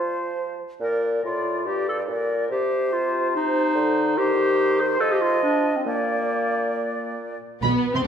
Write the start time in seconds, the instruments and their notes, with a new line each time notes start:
Already playing: bassoon F3, clarinet F4, flute C5
0.80 bassoon A#2, clarinet A#4, flute D5
1.23 bassoon A2, clarinet F4, flute D5
1.65 bassoon G2, clarinet G4, flute D5
1.89 clarinet A4
2.08 bassoon A#2, clarinet A#4, flute D5
2.49 bassoon C3, clarinet G4, flute C5
2.93 clarinet F4
3.33 clarinet D#4, flute C5
3.75 bassoon D3
4.16 bassoon D#3, clarinet G4, flute C5
4.80 clarinet C5
4.99 bassoon F3, clarinet A4, flute D#5
5.12 clarinet G4
5.21 clarinet F4
5.43 clarinet D4
5.76 clarinet C4
5.85 bassoon A#2, clarinet A#3, flute D5
7.62 double bass section B1, cello section B2, viola section B3, violin section B3 B5
7.94 cello section C3, violin section C4 C6, viola section C4